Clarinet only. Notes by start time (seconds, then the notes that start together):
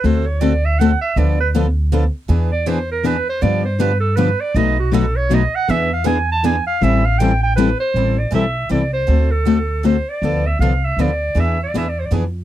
0.05 C5
0.26 C#5
0.41 D5
0.65 E5
0.79 F#5
1.01 E5
1.18 D5
1.40 B4
2.52 D5
2.67 C5
2.91 A#4
3.07 B4
3.29 C5
3.42 D5
3.65 C5
3.80 B4
4.00 A4
4.16 B4
4.40 D5
4.56 D#5
4.79 F#4
4.94 A4
5.16 C#5
5.34 D#5
5.55 F#5
5.70 E5
5.93 F5
6.07 G#5
6.32 A5
6.45 G#5
6.67 F5
6.83 E5
7.05 F5
7.19 G5
7.43 G5
7.56 B4
7.80 C5
8.19 D5
8.34 E5
8.71 D5
8.93 C5
9.31 A4
9.86 C5
10.09 D5
10.46 E5
10.60 F5
10.85 E5
11.00 D5
11.39 E5
11.63 D5
11.77 E5
11.89 D5
11.99 C5
12.06 D5